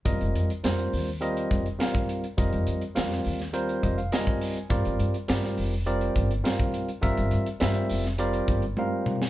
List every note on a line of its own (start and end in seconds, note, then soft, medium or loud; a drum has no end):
0.05 0.18 F1 medium
0.05 0.51 G3 medium
0.05 0.51 C4 medium
0.05 0.51 F4 medium
0.05 0.51 A#4 medium
0.05 0.51 D#5 medium
0.05 kick medium
0.05 closed hi-hat medium
0.21 0.33 F1 medium
0.21 closed hi-hat soft
0.35 0.48 F2 medium
0.35 closed hi-hat soft
0.50 closed hi-hat soft
0.63 0.88 F2 medium
0.63 1.09 G3 medium
0.63 1.09 C4 medium
0.63 1.09 F4 medium
0.63 1.09 A#4 medium
0.63 1.09 C5 medium
0.63 snare medium
0.63 closed hi-hat medium
0.79 closed hi-hat soft
0.93 1.42 D#2 medium
0.93 open hi-hat medium
1.21 1.67 G3 medium
1.21 1.67 C4 medium
1.21 1.67 F4 medium
1.21 1.67 A#4 medium
1.21 1.67 D#5 medium
1.21 closed hi-hat medium
1.37 closed hi-hat soft
1.51 1.75 F1 medium
1.51 kick medium
1.51 closed hi-hat soft
1.66 closed hi-hat soft
1.79 2.25 G3 medium
1.79 2.25 C4 medium
1.79 2.25 F4 medium
1.79 2.25 A#4 medium
1.79 2.25 F5 medium
1.79 snare medium
1.79 closed hi-hat medium
1.95 kick medium
1.95 closed hi-hat soft
2.09 closed hi-hat medium
2.24 closed hi-hat soft
2.37 2.51 F1 medium
2.37 2.83 G3 medium
2.37 2.83 C4 medium
2.37 2.83 F4 medium
2.37 2.83 A#4 medium
2.37 2.83 D#5 medium
2.37 kick medium
2.37 closed hi-hat medium
2.53 2.65 F1 medium
2.53 closed hi-hat soft
2.67 2.80 F2 medium
2.67 closed hi-hat medium
2.81 closed hi-hat soft
2.95 3.21 F2 medium
2.95 3.41 G3 medium
2.95 3.41 C4 medium
2.95 3.41 F4 medium
2.95 3.41 A#4 medium
2.95 3.41 F5 medium
2.95 snare medium
2.95 closed hi-hat medium
3.11 snare soft
3.11 closed hi-hat soft
3.24 3.74 D#2 medium
3.24 open hi-hat medium
3.39 snare soft
3.39 closed hi-hat soft
3.53 3.99 G3 medium
3.53 3.99 C4 medium
3.53 3.99 F4 medium
3.53 3.99 A#4 medium
3.53 4.00 C5 medium
3.53 closed hi-hat medium
3.69 closed hi-hat soft
3.83 4.08 F1 medium
3.83 3.97 D#5 soft
3.83 kick medium
3.83 closed hi-hat soft
3.98 4.11 F5 medium
3.98 closed hi-hat soft
4.12 4.58 G3 medium
4.12 4.58 C4 medium
4.12 4.58 F4 medium
4.12 4.58 A#4 medium
4.12 4.58 D#5 medium
4.12 4.67 G#5 medium
4.12 snare medium
4.12 closed hi-hat medium
4.27 kick medium
4.41 open hi-hat medium
4.56 closed hi-hat soft
4.70 4.83 G1 medium
4.70 5.15 G3 medium
4.70 5.15 C4 medium
4.70 5.16 F4 medium
4.70 5.16 A#4 medium
4.70 5.16 D5 medium
4.70 kick medium
4.70 closed hi-hat medium
4.85 4.98 G1 medium
4.85 closed hi-hat soft
5.00 5.12 G2 medium
5.00 closed hi-hat medium
5.14 closed hi-hat soft
5.28 5.53 G2 medium
5.28 5.74 G3 medium
5.28 5.74 C4 medium
5.28 5.74 F4 medium
5.28 5.74 A#4 medium
5.28 5.74 D5 medium
5.28 snare medium
5.28 closed hi-hat medium
5.43 snare soft
5.43 closed hi-hat soft
5.58 6.07 F1 medium
5.58 open hi-hat medium
5.86 6.32 G3 medium
5.86 6.32 C4 medium
5.86 6.32 F4 medium
5.86 6.32 A#4 medium
5.86 6.32 D5 medium
5.86 closed hi-hat medium
6.01 closed hi-hat soft
6.16 6.40 G1 medium
6.16 kick medium
6.16 closed hi-hat soft
6.31 closed hi-hat soft
6.44 6.90 G3 medium
6.44 6.90 C4 medium
6.44 6.90 F4 medium
6.44 6.90 A#4 medium
6.44 6.90 F5 medium
6.44 snare medium
6.44 closed hi-hat medium
6.59 kick medium
6.59 closed hi-hat soft
6.74 closed hi-hat medium
6.89 closed hi-hat soft
7.01 7.16 G1 medium
7.01 7.47 G3 medium
7.01 7.48 C4 medium
7.01 7.48 F4 medium
7.01 7.48 A#4 medium
7.01 7.48 E5 medium
7.01 kick medium
7.01 closed hi-hat medium
7.17 7.30 G1 medium
7.17 closed hi-hat soft
7.31 7.45 G2 medium
7.31 closed hi-hat soft
7.46 closed hi-hat soft
7.60 7.86 G2 medium
7.60 8.06 G3 medium
7.60 8.06 C4 medium
7.60 8.06 F4 medium
7.60 8.06 A#4 medium
7.60 8.06 E5 medium
7.60 snare medium
7.60 closed hi-hat medium
7.75 closed hi-hat soft
7.90 8.39 F1 medium
7.90 open hi-hat medium
8.04 snare soft
8.04 closed hi-hat soft
8.18 8.64 G3 medium
8.18 8.64 C4 medium
8.18 8.64 F4 medium
8.18 8.64 A#4 medium
8.18 8.65 D5 medium
8.18 closed hi-hat medium
8.33 closed hi-hat soft
8.48 8.72 G1 medium
8.48 kick medium
8.48 closed hi-hat soft
8.62 closed hi-hat soft
8.77 9.23 G3 medium
8.77 9.23 C4 medium
8.77 9.23 F4 medium
8.77 9.23 A#4 medium
8.77 9.23 F5 medium
8.77 high tom soft
9.06 mid tom medium
9.22 snare medium